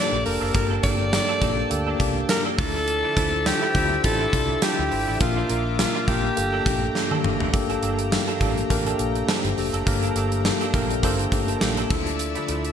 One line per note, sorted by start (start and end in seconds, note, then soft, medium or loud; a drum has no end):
0.00 0.55 G2 medium
0.00 0.14 A#3 medium
0.00 0.25 A#3 loud
0.00 0.12 D4 medium
0.00 0.26 D4 medium
0.00 0.26 G4 medium
0.00 0.11 A4 medium
0.00 0.26 A4 loud
0.00 2.61 C5 loud
0.00 0.22 D5 loud
0.00 2.55 G5 medium
0.00 2.55 A5 medium
0.12 0.22 A#1 medium
0.12 muted clean electric guitar stroke soft
0.25 0.37 F1 medium
0.25 0.52 A#3 medium
0.25 0.52 D4 medium
0.25 0.52 G4 medium
0.25 0.52 A4 medium
0.25 0.53 A#4 medium
0.25 muted clean electric guitar stroke soft
0.25 open hi-hat medium
0.40 0.51 F#1 medium
0.40 0.53 A#3 medium
0.40 0.54 D4 medium
0.40 0.53 A4 medium
0.54 0.76 G1 loud
0.54 1.38 G2 medium
0.54 0.81 A#3 loud
0.54 0.81 D4 medium
0.54 0.81 G4 medium
0.54 0.68 A#4 loud
0.54 0.81 A#4 loud
0.54 kick loud
0.54 closed hi-hat medium
0.70 0.82 A#3 medium
0.70 0.83 D4 medium
0.70 0.83 A4 medium
0.83 1.18 G1 loud
0.83 1.10 A#3 medium
0.83 0.98 A#3 medium
0.83 1.10 D4 medium
0.83 0.99 D4 medium
0.83 1.10 G4 medium
0.83 1.10 A4 medium
0.83 0.98 A4 medium
0.83 1.99 D5 loud
0.83 kick medium
0.83 closed hi-hat medium
1.00 muted clean electric guitar stroke soft
1.12 1.39 A#3 medium
1.12 1.39 D4 medium
1.12 1.39 G4 medium
1.12 1.40 A4 medium
1.12 muted clean electric guitar stroke soft
1.12 snare loud
1.12 closed hi-hat medium
1.12 tambourine medium
1.28 1.40 A#3 medium
1.28 1.41 D4 medium
1.28 1.42 A4 medium
1.41 1.64 A#1 medium
1.41 1.68 A#3 medium
1.41 1.57 A#3 medium
1.41 1.68 D4 medium
1.41 1.57 D4 medium
1.41 1.68 G4 medium
1.41 1.69 A4 medium
1.41 1.57 A4 medium
1.41 kick medium
1.41 closed hi-hat medium
1.58 muted clean electric guitar stroke soft
1.70 1.93 D2 loud
1.70 1.97 A#3 loud
1.70 1.97 D4 loud
1.70 1.97 G4 loud
1.70 1.98 A4 loud
1.70 muted clean electric guitar stroke soft
1.70 closed hi-hat medium
1.87 1.99 A#3 medium
1.87 1.99 D4 medium
1.87 2.00 A4 medium
1.99 2.22 C2 medium
1.99 2.26 A#3 loud
1.99 2.27 D4 medium
1.99 2.27 G4 medium
1.99 2.27 A4 loud
1.99 muted clean electric guitar stroke soft
1.99 kick medium
1.99 closed hi-hat medium
2.16 muted clean electric guitar stroke soft
2.28 2.55 A#3 medium
2.28 2.56 D4 medium
2.28 2.56 G4 medium
2.28 2.56 A4 medium
2.28 2.43 A#4 loud
2.28 muted clean electric guitar stroke soft
2.28 snare loud
2.28 closed hi-hat loud
2.28 tambourine medium
2.45 2.59 A#3 medium
2.45 2.59 D4 medium
2.45 2.61 A4 medium
2.58 3.02 D2 loud
2.58 3.42 D3 medium
2.58 3.11 D4 medium
2.58 3.11 E4 medium
2.58 3.12 F4 medium
2.58 3.48 A4 loud
2.58 3.12 A4 medium
2.58 5.18 D5 medium
2.58 6.33 E5 medium
2.58 5.18 E6 medium
2.58 muted clean electric guitar stroke soft
2.58 kick loud
2.58 open hi-hat medium
2.75 muted clean electric guitar stroke soft
2.88 muted clean electric guitar stroke soft
2.88 closed hi-hat medium
3.03 3.16 F3 medium
3.03 3.16 A3 medium
3.03 3.17 E4 medium
3.16 3.51 D2 medium
3.16 3.32 F3 medium
3.16 3.32 A3 medium
3.16 3.43 D4 medium
3.16 3.43 E4 medium
3.16 3.31 E4 medium
3.16 3.43 F4 medium
3.16 3.44 C5 medium
3.16 kick medium
3.16 closed hi-hat medium
3.33 muted clean electric guitar stroke soft
3.45 3.72 D4 medium
3.45 3.72 E4 medium
3.45 3.73 F4 medium
3.45 4.04 G4 loud
3.45 3.73 A4 medium
3.45 muted clean electric guitar stroke soft
3.45 snare loud
3.45 closed hi-hat medium
3.45 tambourine medium
3.62 3.74 F3 medium
3.62 3.74 A3 medium
3.62 3.75 E4 medium
3.74 3.97 D2 loud
3.74 3.90 F3 medium
3.74 3.90 A3 medium
3.74 4.01 D4 medium
3.74 4.01 E4 medium
3.74 3.90 E4 medium
3.74 4.02 F4 medium
3.74 4.02 C5 medium
3.74 kick medium
3.74 closed hi-hat medium
3.91 muted clean electric guitar stroke medium
4.03 4.26 A1 loud
4.03 4.30 D4 loud
4.03 4.31 E4 medium
4.03 4.31 F4 medium
4.03 4.31 G4 loud
4.03 4.64 A4 loud
4.03 muted clean electric guitar stroke soft
4.03 kick medium
4.03 closed hi-hat medium
4.20 4.32 F3 medium
4.20 4.33 A3 medium
4.20 4.33 E4 medium
4.33 4.55 C2 medium
4.33 4.59 D4 medium
4.33 4.60 E4 medium
4.33 4.60 F4 medium
4.33 4.60 A4 medium
4.33 muted clean electric guitar stroke soft
4.33 kick medium
4.33 closed hi-hat medium
4.49 muted clean electric guitar stroke medium
4.61 4.81 F3 medium
4.61 4.78 A3 medium
4.61 4.88 D4 medium
4.61 4.89 E4 medium
4.61 4.77 E4 medium
4.61 4.89 F4 medium
4.61 5.20 G4 loud
4.61 4.89 A4 medium
4.61 snare loud
4.61 closed hi-hat loud
4.61 tambourine medium
4.78 4.89 D2 medium
4.78 muted clean electric guitar stroke medium
4.90 5.04 G#1 medium
4.90 5.18 D4 medium
4.90 5.18 E4 medium
4.90 5.18 F4 medium
4.90 5.18 C5 medium
4.90 muted clean electric guitar stroke soft
4.90 open hi-hat medium
5.07 5.18 A1 medium
5.07 5.20 F3 medium
5.07 5.20 A3 medium
5.07 5.19 E4 medium
5.20 5.43 A#1 loud
5.20 6.04 A#2 medium
5.20 5.47 A#3 medium
5.20 5.47 D4 medium
5.20 5.47 F4 medium
5.20 5.75 F4 medium
5.20 6.36 A#4 medium
5.20 5.47 A#4 loud
5.20 6.36 D6 medium
5.20 muted clean electric guitar stroke soft
5.20 kick loud
5.20 closed hi-hat medium
5.36 5.48 A#3 medium
5.36 5.49 D4 medium
5.36 5.50 F4 medium
5.49 5.84 A#1 medium
5.49 5.76 A#3 medium
5.49 5.64 A#3 medium
5.49 5.76 D4 medium
5.49 5.65 D4 medium
5.49 5.76 F4 medium
5.49 5.64 F4 medium
5.49 5.76 A#4 medium
5.49 closed hi-hat medium
5.78 6.05 A#3 medium
5.78 6.05 D4 medium
5.78 6.05 F4 medium
5.78 6.10 F4 medium
5.78 6.06 A#4 medium
5.78 muted clean electric guitar stroke soft
5.78 snare loud
5.78 closed hi-hat medium
5.78 tambourine medium
5.95 6.07 A#3 medium
5.95 6.07 D4 medium
5.95 6.08 F4 medium
6.07 6.30 A#1 medium
6.07 6.34 A#3 medium
6.07 6.23 A#3 medium
6.07 6.34 D4 medium
6.07 6.23 D4 medium
6.07 6.35 F4 medium
6.07 6.23 F4 medium
6.07 7.25 G4 loud
6.07 6.35 A#4 medium
6.07 kick medium
6.07 closed hi-hat medium
6.24 muted clean electric guitar stroke medium
6.36 6.59 G1 loud
6.36 7.20 G2 medium
6.36 7.52 A3 medium
6.36 6.63 A#3 loud
6.36 6.63 D4 medium
6.36 6.64 G4 medium
6.36 6.64 A4 loud
6.36 7.52 G5 medium
6.36 7.51 A#5 medium
6.36 muted clean electric guitar stroke soft
6.36 closed hi-hat medium
6.53 6.65 A#3 medium
6.53 6.66 D4 medium
6.53 6.66 A4 medium
6.65 6.88 A#1 medium
6.65 6.92 A#3 medium
6.65 6.93 D4 medium
6.65 6.93 G4 medium
6.65 6.93 A4 medium
6.65 muted clean electric guitar stroke soft
6.65 kick medium
6.65 closed hi-hat medium
6.82 muted clean electric guitar stroke medium
6.95 7.22 A#3 medium
6.95 7.22 D4 medium
6.95 7.22 G4 medium
6.95 7.22 A4 medium
6.95 muted clean electric guitar stroke soft
6.95 snare medium
7.11 7.23 A#3 medium
7.11 7.24 D4 medium
7.11 7.24 A4 medium
7.11 high tom medium
7.24 7.46 F#1 medium
7.24 7.51 A#3 medium
7.24 7.51 D4 medium
7.24 7.51 G4 medium
7.24 7.52 A4 loud
7.24 muted clean electric guitar stroke soft
7.24 mid tom medium
7.40 muted clean electric guitar stroke medium
7.40 floor tom medium
7.53 7.76 G1 loud
7.53 8.37 G2 medium
7.53 11.87 A3 medium
7.53 7.80 A#3 loud
7.53 7.80 D4 loud
7.53 7.80 G4 loud
7.53 7.80 A4 loud
7.53 11.87 G5 medium
7.53 11.86 A#5 medium
7.53 muted clean electric guitar stroke soft
7.53 kick loud
7.53 closed hi-hat medium
7.70 7.81 A#3 medium
7.70 7.82 D4 medium
7.70 7.83 A4 medium
7.70 closed hi-hat soft
7.82 8.17 G1 medium
7.82 8.09 A#3 medium
7.82 7.97 A#3 medium
7.82 8.09 D4 medium
7.82 7.98 D4 medium
7.82 8.09 G4 medium
7.82 8.10 A4 medium
7.82 7.98 A4 medium
7.82 closed hi-hat medium
7.99 muted clean electric guitar stroke soft
7.99 closed hi-hat medium
8.11 8.38 A#3 medium
8.11 8.38 D4 medium
8.11 8.39 G4 medium
8.11 8.39 A4 loud
8.11 muted clean electric guitar stroke soft
8.11 snare loud
8.11 tambourine medium
8.28 8.40 A#3 medium
8.28 8.40 D4 medium
8.28 8.41 A4 medium
8.28 closed hi-hat soft
8.40 8.63 A1 medium
8.40 8.67 A#3 medium
8.40 8.56 A#3 medium
8.40 8.67 D4 medium
8.40 8.56 D4 medium
8.40 8.68 G4 medium
8.40 8.68 A4 loud
8.40 8.56 A4 medium
8.40 kick medium
8.40 closed hi-hat medium
8.57 muted clean electric guitar stroke soft
8.57 closed hi-hat medium
8.70 8.92 A1 loud
8.70 8.96 A#3 loud
8.70 8.97 D4 loud
8.70 8.97 G4 loud
8.70 8.97 A#4 loud
8.70 muted clean electric guitar stroke soft
8.70 kick medium
8.70 closed hi-hat medium
8.86 8.99 A#3 medium
8.86 8.99 D4 medium
8.86 9.00 A4 medium
8.86 closed hi-hat medium
8.99 9.21 A#1 medium
8.99 9.26 A#3 medium
8.99 9.26 D4 medium
8.99 9.26 G4 medium
8.99 9.26 A4 loud
8.99 muted clean electric guitar stroke soft
8.99 closed hi-hat medium
9.15 muted clean electric guitar stroke medium
9.15 closed hi-hat medium
9.28 9.55 A#3 medium
9.28 9.47 A#3 medium
9.28 9.55 D4 medium
9.28 9.44 D4 medium
9.28 9.55 G4 medium
9.28 9.43 A4 medium
9.28 9.55 C5 medium
9.28 snare loud
9.28 tambourine medium
9.44 9.54 G1 medium
9.44 muted clean electric guitar stroke soft
9.44 closed hi-hat medium
9.57 9.70 F1 medium
9.57 9.84 A#3 medium
9.57 9.84 D4 medium
9.57 9.84 G4 medium
9.57 9.85 A4 loud
9.57 muted clean electric guitar stroke soft
9.57 open hi-hat medium
9.73 9.83 F#1 medium
9.73 9.85 A#3 medium
9.73 9.86 D4 medium
9.73 9.86 A4 medium
9.73 closed hi-hat medium
9.86 10.09 G1 loud
9.86 10.70 G2 medium
9.86 10.13 A#3 loud
9.86 10.13 D4 loud
9.86 10.13 G4 loud
9.86 10.14 A#4 loud
9.86 muted clean electric guitar stroke soft
9.86 kick loud
9.86 closed hi-hat medium
10.02 10.14 A#3 medium
10.02 10.15 D4 medium
10.02 10.16 A4 medium
10.02 closed hi-hat medium
10.15 10.49 G1 medium
10.15 10.42 A#3 medium
10.15 10.30 A#3 medium
10.15 10.42 D4 medium
10.15 10.31 D4 medium
10.15 10.42 G4 medium
10.15 10.43 A4 medium
10.15 10.30 A4 medium
10.15 closed hi-hat medium
10.32 muted clean electric guitar stroke medium
10.32 closed hi-hat medium
10.45 10.71 A#3 medium
10.45 10.72 D4 medium
10.45 10.72 G4 medium
10.45 10.72 A4 loud
10.45 muted clean electric guitar stroke soft
10.45 snare loud
10.45 tambourine medium
10.61 10.73 A#3 medium
10.61 10.74 D4 medium
10.61 10.74 A4 medium
10.61 closed hi-hat soft
10.74 11.05 A#1 medium
10.74 11.01 A#3 medium
10.74 10.89 A#3 medium
10.74 11.01 D4 medium
10.74 10.89 D4 medium
10.74 11.01 G4 medium
10.74 10.89 A4 medium
10.74 11.01 A#4 medium
10.74 kick medium
10.74 closed hi-hat medium
10.90 muted clean electric guitar stroke soft
10.90 closed hi-hat medium
11.03 11.25 G1 loud
11.03 11.29 A#3 loud
11.03 11.21 A#3 medium
11.03 11.30 D4 loud
11.03 11.19 D4 medium
11.03 11.30 G4 loud
11.03 11.18 A4 loud
11.03 11.30 C5 loud
11.03 kick medium
11.03 closed hi-hat medium
11.19 muted clean electric guitar stroke soft
11.19 closed hi-hat medium
11.32 11.54 G1 medium
11.32 11.58 A#3 medium
11.32 11.59 D4 medium
11.32 11.59 G4 medium
11.32 11.59 A4 loud
11.32 muted clean electric guitar stroke soft
11.32 kick medium
11.32 closed hi-hat medium
11.48 11.60 A#3 medium
11.48 11.61 D4 medium
11.48 11.60 A4 medium
11.48 closed hi-hat soft
11.61 11.83 A#1 loud
11.61 11.88 A#3 medium
11.61 11.88 D4 medium
11.61 11.88 G4 medium
11.61 11.88 A4 medium
11.61 muted clean electric guitar stroke soft
11.61 snare loud
11.61 tambourine medium
11.77 11.91 A#3 medium
11.77 11.91 D4 medium
11.77 11.93 A4 medium
11.77 closed hi-hat medium
11.90 12.34 D2 loud
11.90 12.72 D3 medium
11.90 12.43 D4 medium
11.90 12.43 E4 medium
11.90 12.43 F4 medium
11.90 12.44 A4 loud
11.90 12.72 D5 medium
11.90 12.72 E5 medium
11.90 12.72 E6 medium
11.90 muted clean electric guitar stroke soft
11.90 kick loud
11.90 crash medium
12.07 muted clean electric guitar stroke soft
12.07 closed hi-hat medium
12.19 muted clean electric guitar stroke soft
12.19 closed hi-hat medium
12.35 12.47 F3 medium
12.35 12.48 A3 medium
12.35 12.48 E4 medium
12.35 closed hi-hat medium
12.48 12.72 D2 medium
12.48 12.63 F3 medium
12.48 12.64 A3 medium
12.48 12.72 D4 medium
12.48 12.72 E4 medium
12.48 12.63 E4 medium
12.48 12.72 F4 medium
12.48 12.72 A4 medium
12.48 closed hi-hat medium
12.64 muted clean electric guitar stroke soft
12.64 closed hi-hat medium